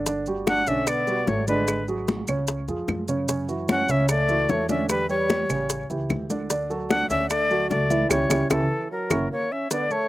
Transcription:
Already playing: G1
0.06 D3 D4 D5, high bongo, high conga, maracas
0.26 G3 F#4 G4, high conga, maracas
0.47 D4 F#5, high bongo, high conga, claves, maracas
0.67 B1 D3 C#4 D4 D5 E5, high bongo, high conga, maracas
0.87 B3 D5, high bongo, high conga, claves, maracas
1.07 G3 F#4 G4, high bongo, high conga, maracas
1.27 G#1 A3 C#5, high bongo, low bongo, high conga, maracas
1.48 D3 G#3 D4 B4 D5, high bongo, high conga, maracas
1.68 high bongo, high conga, claves, maracas
1.88 F#3 F#4 G#4, high conga, maracas
2.08 high bongo, high conga, maracas
2.27 C#2 C#3 C#4 C#5, high bongo, high conga, claves, maracas
2.47 high bongo, high conga, maracas
2.68 F2 F3 F4 G#4, high bongo, high conga, maracas
2.88 F#2, high bongo, low bongo, high conga, claves, maracas
3.08 C#3 C#4 C#5, high bongo, maracas
3.28 C#3 C#4 C#5, high bongo, high conga, maracas
3.48 E3 E4 F#4, high conga, maracas
3.68 C#4 F#5, high bongo, high conga, claves, maracas
3.88 C#2 C#3 C#4 C#5 E5, high bongo, high conga, maracas
4.08 A3 D5, high bongo, high conga, claves, maracas
4.28 E3 E4 F#4, high bongo, high conga, maracas
4.49 E2 A3 C#5, high bongo, low bongo, high conga, maracas
4.69 D3 C#4 D4 D5 E5, high bongo, high conga, maracas
4.89 G3 B4, high bongo, high conga, claves, maracas
5.09 G3 G4 B4 C#5, high conga, maracas
5.29 high bongo, high conga, maracas
5.49 A1 C#3 C#4 C#5, high bongo, high conga, claves, maracas
5.70 high bongo, high conga, maracas
5.90 C#2 E3 E4 G4, high bongo, high conga, maracas
6.09 D2, high bongo, low bongo, high conga, claves, maracas
6.30 D3 D4 D5, high bongo, high conga, maracas
6.50 D3 D4 D5, high bongo, high conga, maracas
6.70 F#3 F#4 A4, high conga, maracas
6.90 D4 F#5, high bongo, high conga, claves, maracas
7.09 D2 D3 C#4 D4 D5 E5, high bongo, high conga, maracas
7.30 A3 D5, high bongo, high conga, claves, maracas
7.50 F#3 F#4 A4, high bongo, high conga, maracas
7.70 C#2 A3 D5, high bongo, low bongo, high conga, maracas
7.90 E3 E4 E5, high bongo, high conga, maracas
8.09 C#2 G3 C#4 E4 G4 C#5, high bongo, low conga, claves, maracas
8.29 C#2 C#4 E4 G4, high bongo, low conga, claves, maracas
8.50 C#2 E3 C#4 E4 G4 A4, high bongo, low conga, claves, maracas
8.91 F#3 A#4
9.10 F#1 C#4 E4 F#4, high bongo, low conga, claves, maracas
9.31 A#3 C#5
9.52 C#4 E5
9.71 D3 B3 D4 D5, high bongo, high conga, maracas
9.90 A3 A4 C#5 A5, high conga, maracas

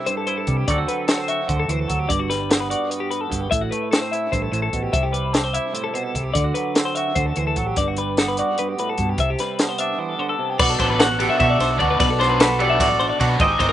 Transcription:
Already playing: G3 C4 E4
0.06 G2 C5, closed hi-hat
0.17 A4
0.27 E4 C5, closed hi-hat
0.37 A4
0.47 C3 G3, kick, closed hi-hat
0.57 G4
0.68 D2 D3 F#3 C4 F#4 A4 D5, kick, closed hi-hat
0.78 F#4
0.87 F#3 B4, closed hi-hat
1.08 C4 A4, snare, closed hi-hat
1.18 C5
1.28 F#4 E5, closed hi-hat
1.48 D2 D3 C5, kick, closed hi-hat
1.60 A4
1.68 D2 E3 C5, closed hi-hat
1.80 A4
1.88 D2 F#3, kick, closed hi-hat
1.99 G4
2.08 G1 G2 D5, kick, closed hi-hat
2.19 F#4
2.30 G3 B4, snare, closed hi-hat
2.49 B3 A4, snare, closed hi-hat
2.60 B4
2.70 F#4 D5, closed hi-hat
2.90 B4, closed hi-hat
3.00 G4
3.11 B4, closed hi-hat
3.21 A4
3.30 G1 G2, kick, closed hi-hat
3.41 G4
3.51 A1 A2 E5, kick, closed hi-hat
3.61 F#4
3.71 A3 B4, closed hi-hat
3.91 C4 A4, snare, closed hi-hat
4.02 C5
4.12 E4 E5, closed hi-hat
4.32 A1 G2 C5, kick, closed hi-hat
4.42 A4
4.52 A1 A2 C5, closed hi-hat
4.62 A4
4.73 A1 B2, kick, closed hi-hat
4.83 G4
4.92 C2 C3 E5, kick, closed hi-hat
5.03 G4
5.12 G3 B4, closed hi-hat
5.33 C4 A4, snare, closed hi-hat
5.44 C5
5.54 E4 E5, closed hi-hat
5.74 A2 C5, closed hi-hat
5.84 A4
5.94 B2 C5, closed hi-hat
6.04 A4
6.14 C2 C3, kick, closed hi-hat
6.24 G4
6.34 D2 D3 D5, kick, closed hi-hat
6.44 F#4
6.54 F#3 B4, closed hi-hat
6.75 C4 A4, snare, closed hi-hat
6.85 C5
6.95 F#4 E5, closed hi-hat
7.15 D2 D3 C5, kick, closed hi-hat
7.26 A4
7.36 D2 E3 C5, closed hi-hat
7.47 A4
7.56 A1 F#3, kick, closed hi-hat
7.67 G4
7.76 G1 G2 D5, kick, closed hi-hat
7.88 F#4
7.97 G3 B4, closed hi-hat
8.17 B3 A4, snare, closed hi-hat
8.28 B4
8.37 F#4 D5, closed hi-hat
8.58 G2 B4, closed hi-hat
8.69 G4
8.79 A2 B4, closed hi-hat
8.90 A4
8.98 G2 B2, kick, closed hi-hat
9.09 G4
9.18 C2 C3 E5, kick, closed hi-hat
9.30 G4
9.39 G3 B4, snare, closed hi-hat
9.59 B3 A4, snare, closed hi-hat
9.69 C5
9.78 D4 E5, closed hi-hat
9.98 E3 C5
10.09 A4
10.19 D3 C5
10.29 A4
10.39 C3
10.50 G4
10.59 B1 B2 F#3 D4 F#4 A4 B4 D5, kick, crash
10.70 A4
10.79 A1 B2 F#3 B3 D4 C5, kick, ride
10.90 B4
10.99 F#4 A4 F#5, snare, ride
11.19 B2 F#3 B3 D4 G4 A4, ride
11.30 E5
11.40 B2 F#4 E5, kick, ride
11.50 D5
11.59 B1 D4 C5, snare, ride
11.71 D5
11.79 D2 B2 F#3 B3 D4 F#4 D5, kick, ride
11.90 B4
12.00 B1 B2 B4 D5, kick, ride
12.10 A4
12.19 B2 F#3 B3 D4 C5, snare, ride
12.29 B4
12.40 F#4 A4 B4, snare, ride
12.59 B2 F#3 B3 D4 G4 A4 D5, ride
12.70 E5
12.80 A1 F#4 D5, kick, ride
12.89 D5
12.99 D4 C5, ride
13.09 D5
13.20 B2 F#3 B3 D4 F#4, kick, ride
13.29 B4
13.39 G#1 G#3 C4 D#4 G4 C5 D#5, kick, ride
13.50 G#4
13.59 G1 D#3 G#3 C4 D#4 C5, kick, ride
13.69 A#4

